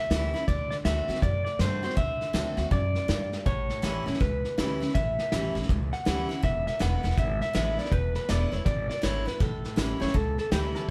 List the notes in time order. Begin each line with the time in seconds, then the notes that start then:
Already playing: E2 E5
0.10 D2 E3 G3 C#4 E4, snare, hi-hat pedal
0.34 C#4 E4, snare
0.48 D2 D3 D5, kick, snare
0.71 D5, snare
0.85 D2 D3 A3 C4 F#4 E5, snare, hi-hat pedal
1.08 D2 C4 F#4, snare
1.15 snare
1.22 F#2 A2 D5, kick, snare
1.45 D5, snare
1.59 G2 D3 A3 C4 F#4 C5, snare, hi-hat pedal
1.83 C4 F#4 C5, snare
1.90 snare
1.97 D2 D3 E5, kick, snare
2.21 snare
2.33 D2 D3 A3 C4 F#4, snare, hi-hat pedal
2.57 D2 C4 F#4, snare
2.71 F#2 D5, kick, snare
2.95 snare
3.08 G2, snare, hi-hat pedal
3.32 snare
3.46 A1 A2 C#5, kick, snare
3.69 snare
3.82 A1 E3 G3 C#4 E4, snare, hi-hat pedal
4.06 A1 C#4 E4, snare
4.14 snare
4.20 C#2 E2 B4, kick, snare
4.44 snare
4.58 D2 E3 G3 C#4 E4, snare, hi-hat pedal
4.80 C#4 E4, snare
4.89 snare
4.95 A1 A2 E5, kick, snare
5.19 snare
5.32 A1 E3 G3 C#4 E4, snare, hi-hat pedal
5.55 A1 C#4 E4, snare
5.62 snare
5.69 C#2 E2, kick, snare
5.93 F#5, snare
6.05 D2 E3 G3 C#4 E4, snare, hi-hat pedal
6.29 C#4 E4, snare
6.43 E1 E2 E5, kick, snare
6.67 E5, snare
6.79 E1 D3 G#3 B3 E4 F#5, snare, hi-hat pedal
7.03 E1 B3 E4, snare
7.11 snare
7.17 G#1 B2 E5, kick, snare
7.41 E5, snare
7.53 A1 D3 G#3 B3 E4 E5, snare, hi-hat pedal
7.78 D5, snare
7.85 snare
7.91 E1 E2 B4, kick, snare
8.15 B4, snare
8.29 E1 D3 G#3 B3 E4 D5, snare, hi-hat pedal
8.52 E1 B3 E4 C#5, snare
8.65 G#1 B2 D5, kick, snare
8.90 D5, snare
9.02 G#1 D3 G#3 B3 E4 C#5, snare, hi-hat pedal
9.26 B3 E4 B4, snare
9.40 A1 A2 A4, kick, snare
9.64 snare
9.76 A1 E3 G3 C#4 E4, snare, hi-hat pedal
10.00 A1 C#4 E4 C#5, snare
10.08 snare
10.14 C#2 E2 A4, kick, snare
10.38 A4, snare
10.51 D2 E3 G3 C#4 E4 G4, snare, hi-hat pedal
10.75 A4, snare